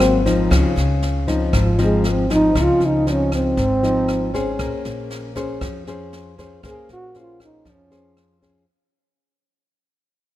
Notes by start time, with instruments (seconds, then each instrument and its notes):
Already playing: upright bass G#1, nylon-string guitar G#2 F#3 A#3 C4, trombone C4
0.00 cross-stick, snare
0.26 nylon-string guitar F3 C4 D#4, kick, snare
0.50 upright bass C#2, nylon-string guitar C#3, kick, cross-stick, snare
0.76 upright bass C#2, snare
1.02 snare
1.27 nylon-string guitar F3 C4 D#4, kick, snare
1.53 upright bass G#1, nylon-string guitar G#2, kick, cross-stick, snare
1.60 trombone F3
1.78 nylon-string guitar F3 C4 D#4, snare
1.84 trombone G#3
2.04 snare
2.11 trombone C4
2.30 nylon-string guitar F3 C4 D#4, kick, snare
2.34 trombone D#4
2.55 upright bass C#2, nylon-string guitar C#3 F3 C4 D#4, kick, cross-stick, snare
2.62 trombone F4
2.80 upright bass C#2, snare
2.85 trombone D#4
3.06 nylon-string guitar F3 C4 D#4, snare
3.12 trombone C#4
3.32 trombone C4, kick, cross-stick, snare
3.57 upright bass G#1, nylon-string guitar G#2, kick, snare
3.83 nylon-string guitar F3 C4 D#4, snare
4.08 cross-stick, snare
4.34 nylon-string guitar C#4 G#4 C5, kick, snare
4.59 upright bass A#1, nylon-string guitar A#3, kick, cross-stick, snare
4.85 upright bass A#1, snare
5.10 snare
5.35 nylon-string guitar C#4 G#4 C5, kick, snare
5.61 upright bass F2, nylon-string guitar F3, kick, cross-stick, snare
5.87 nylon-string guitar C#4 G#4 C5, snare
6.13 snare
6.38 nylon-string guitar C#4 G#4 C5, kick, snare
6.63 upright bass A#1, nylon-string guitar A#3 C#4 G#4 C5, kick, cross-stick, snare
6.70 trombone G#4
6.89 upright bass A#1, snare
6.93 trombone F#4
7.14 nylon-string guitar C#4 G#4 C5, snare
7.20 trombone F4
7.40 trombone D#4, kick, cross-stick, snare
7.65 upright bass F2, nylon-string guitar F3, kick, snare
7.71 trombone C#4
7.91 nylon-string guitar C#4 G#4 C5, snare
8.17 cross-stick, snare
8.42 nylon-string guitar C#4 G#4 C5, kick, snare